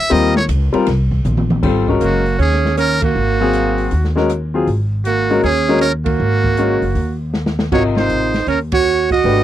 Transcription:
0.00 0.14 E5 loud
0.10 0.48 D#2 medium
0.10 0.33 G3 medium
0.10 0.33 C4 medium
0.10 0.33 F4 medium
0.10 0.34 A#4 medium
0.10 0.36 D#5 loud
0.10 ride medium
0.36 0.44 C#5 loud
0.36 snare medium
0.48 0.72 C#2 medium
0.48 hi-hat pedal medium
0.48 ride medium
0.73 0.85 G3 medium
0.73 0.85 C4 medium
0.73 0.86 F4 medium
0.73 0.86 A#4 medium
0.73 ride medium
0.86 1.24 C2 medium
0.86 snare soft
0.86 ride medium
1.11 kick medium
1.25 1.62 A#1 medium
1.25 hi-hat pedal medium
1.25 mid tom medium
1.37 mid tom medium
1.50 mid tom medium
1.63 1.98 G#1 medium
1.63 1.85 G3 medium
1.63 1.85 C4 medium
1.63 1.86 F4 medium
1.63 1.86 A4 medium
1.63 kick medium
1.63 crash medium
1.88 2.21 G#3 medium
1.88 2.21 C#4 medium
1.88 2.21 F#4 medium
1.88 2.22 A#4 medium
1.88 kick medium
2.00 2.36 F#1 medium
2.00 2.36 A#3 medium
2.00 2.38 F#4 medium
2.00 closed hi-hat medium
2.26 open hi-hat soft
2.38 3.11 D#2 medium
2.38 2.74 C#4 medium
2.38 2.75 G#4 medium
2.38 open hi-hat soft
2.52 snare soft
2.65 snare soft
2.77 3.00 C#4 medium
2.77 3.01 A#4 loud
2.77 cross-stick medium
2.77 closed hi-hat medium
3.02 4.12 A#3 medium
3.02 4.13 F#4 medium
3.02 kick medium
3.02 ride medium
3.15 3.88 G#1 medium
3.40 3.89 F#3 medium
3.40 3.89 C4 medium
3.40 3.90 G#4 medium
3.40 3.89 F5 medium
3.53 closed hi-hat medium
3.78 open hi-hat soft
3.91 4.64 D#2 medium
3.91 open hi-hat soft
4.04 snare soft
4.16 4.28 G#3 medium
4.16 4.28 C#4 medium
4.16 4.28 F#4 medium
4.16 4.29 A#4 medium
4.16 snare soft
4.29 cross-stick medium
4.29 closed hi-hat medium
4.54 4.66 F#3 medium
4.54 4.66 C4 medium
4.54 4.66 F4 medium
4.54 4.67 G#4 medium
4.67 5.40 G#1 medium
4.67 open hi-hat soft
5.05 5.41 A#3 medium
5.05 5.41 F#4 medium
5.05 closed hi-hat medium
5.30 5.42 G#3 medium
5.30 5.42 C#4 medium
5.30 5.43 F#4 medium
5.30 5.43 A#4 medium
5.30 open hi-hat soft
5.43 6.16 D#2 medium
5.43 5.79 C#4 medium
5.43 5.79 G#4 loud
5.43 open hi-hat soft
5.68 5.80 G#3 medium
5.68 5.80 C#4 medium
5.68 5.81 F#4 medium
5.68 5.81 A#4 medium
5.81 5.92 C#4 medium
5.81 5.93 A#4 loud
5.81 cross-stick medium
5.81 closed hi-hat medium
6.06 7.16 A#3 medium
6.06 7.16 F#4 medium
6.06 kick medium
6.06 ride medium
6.20 6.78 G#1 medium
6.44 kick medium
6.57 6.80 G#3 medium
6.57 6.80 C#4 soft
6.57 6.81 F#4 medium
6.57 6.81 A#4 medium
6.57 closed hi-hat medium
6.82 6.95 F#1 medium
6.82 open hi-hat soft
6.95 7.68 D#2 medium
6.95 open hi-hat soft
7.34 snare soft
7.46 snare medium
7.59 snare medium
7.72 8.07 G#1 medium
7.72 8.30 C3 medium
7.72 8.30 F4 medium
7.72 7.83 F#4 medium
7.72 8.30 A#4 medium
7.72 7.84 C#5 medium
7.72 8.31 D#5 medium
7.72 kick medium
7.72 crash medium
7.96 8.44 D#4 medium
7.96 8.45 C5 medium
7.96 snare medium
8.09 8.45 A1 medium
8.09 closed hi-hat medium
8.34 snare soft
8.34 open hi-hat soft
8.47 9.20 D#2 medium
8.47 8.59 C#4 medium
8.47 8.60 A#4 medium
8.47 open hi-hat soft
8.72 9.08 F#4 medium
8.72 9.09 C#5 loud
8.72 kick medium
8.72 ride medium
9.10 9.44 F#4 medium
9.10 9.44 D#5 medium
9.10 kick soft
9.10 open hi-hat soft
9.23 9.44 G#1 medium
9.23 9.44 A3 medium
9.23 9.44 D4 medium
9.23 9.44 G4 medium
9.23 9.44 B4 medium
9.23 open hi-hat soft

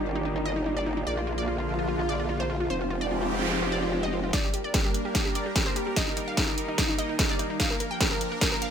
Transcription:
0.00 1.05 G1 medium
0.00 1.05 D#3 medium
0.00 1.03 G3 medium
0.00 2.67 A#3 medium
0.00 1.03 G4 medium
0.15 0.24 D#4 medium
0.25 0.34 D#4 medium
0.36 0.44 D#4 medium
0.45 0.55 D#5 medium
0.56 0.64 D#4 medium
0.66 0.75 D#4 medium
0.77 0.85 D5 medium
0.86 0.95 D#4 medium
0.97 1.05 D#4 medium
1.07 2.68 A#1 medium
1.07 2.68 D3 medium
1.07 2.68 F3 medium
1.07 2.68 F4 medium
1.07 1.16 D5 loud
1.17 1.26 F4 medium
1.27 1.36 F4 medium
1.38 1.46 D5 medium
1.48 1.57 F4 medium
1.58 1.67 F4 medium
1.79 1.87 F4 medium
1.88 1.98 F4 medium
1.99 2.07 F4 medium
2.09 2.18 D5 medium
2.20 2.28 F4 medium
2.29 2.38 F4 medium
2.40 2.48 C5 medium
2.50 2.59 F4 medium
2.60 2.69 F4 medium
2.70 4.31 F1 medium
2.70 4.32 F3 medium
2.70 4.32 G#3 medium
2.70 4.32 C4 medium
2.70 4.32 G4 medium
2.70 2.79 C5 loud
2.70 noise sweep medium
2.81 2.89 F4 medium
2.90 3.00 F4 medium
3.01 3.09 D5 medium
3.11 3.20 F4 medium
3.22 3.30 F4 medium
3.42 3.50 F4 medium
3.52 3.61 F4 medium
3.62 3.71 F4 medium
3.72 3.81 D5 medium
3.83 3.91 F4 medium
3.92 4.02 F4 medium
4.03 4.11 D#5 medium
4.13 4.22 F4 medium
4.23 4.32 F4 medium
4.33 7.56 G3 medium
4.33 5.95 A#3 medium
4.33 5.95 D4 medium
4.33 7.56 A#4 medium
4.33 4.42 D5 loud
4.33 kick medium
4.33 snare soft
4.33 closed hi-hat medium
4.44 4.52 G4 medium
4.54 4.63 G4 medium
4.54 closed hi-hat medium
4.64 4.73 D5 medium
4.74 4.83 G4 medium
4.74 kick loud
4.74 snare soft
4.74 closed hi-hat medium
4.85 4.93 G4 medium
4.94 closed hi-hat medium
5.05 5.13 G4 medium
5.15 5.24 G4 medium
5.15 kick medium
5.15 snare soft
5.15 closed hi-hat medium
5.25 5.34 G4 medium
5.35 5.44 D5 medium
5.35 closed hi-hat medium
5.46 5.54 G4 medium
5.56 5.65 G4 medium
5.56 kick medium
5.56 snare soft
5.56 closed hi-hat medium
5.66 5.75 C5 medium
5.76 5.85 G4 medium
5.76 closed hi-hat medium
5.87 5.95 G4 medium
5.96 8.71 A#3 medium
5.96 7.58 D#4 medium
5.96 6.06 D#5 loud
5.96 kick loud
5.96 snare medium
5.96 closed hi-hat medium
6.07 6.15 D#4 medium
6.17 6.26 D#4 medium
6.17 closed hi-hat medium
6.28 6.36 F5 medium
6.37 6.46 D#4 medium
6.37 kick loud
6.37 snare medium
6.37 closed hi-hat medium
6.48 6.56 D#4 medium
6.58 closed hi-hat medium
6.68 6.77 D#4 medium
6.78 6.87 D#4 medium
6.78 kick medium
6.78 snare medium
6.78 closed hi-hat medium
6.89 6.97 D#4 medium
6.98 7.08 D#5 medium
6.98 closed hi-hat medium
7.09 7.17 D#4 medium
7.19 7.28 D#4 medium
7.19 kick medium
7.19 snare medium
7.19 closed hi-hat medium
7.30 7.38 D5 medium
7.39 7.48 D#4 medium
7.39 closed hi-hat medium
7.50 7.58 D#4 medium
7.60 8.71 F3 medium
7.60 8.71 D4 medium
7.60 8.71 A#4 medium
7.60 7.69 F5 loud
7.60 kick medium
7.60 snare medium
7.60 closed hi-hat medium
7.70 7.79 A#4 medium
7.80 7.89 A#4 medium
7.80 closed hi-hat medium
7.91 7.99 G5 medium
8.01 8.10 A#4 medium
8.01 kick loud
8.01 snare medium
8.01 closed hi-hat medium
8.11 8.20 A#4 medium
8.21 closed hi-hat medium
8.32 8.40 A#4 medium
8.41 8.51 A#4 medium
8.41 kick medium
8.41 snare medium
8.41 closed hi-hat medium
8.52 8.60 A#4 medium
8.62 8.71 F5 medium
8.62 closed hi-hat medium

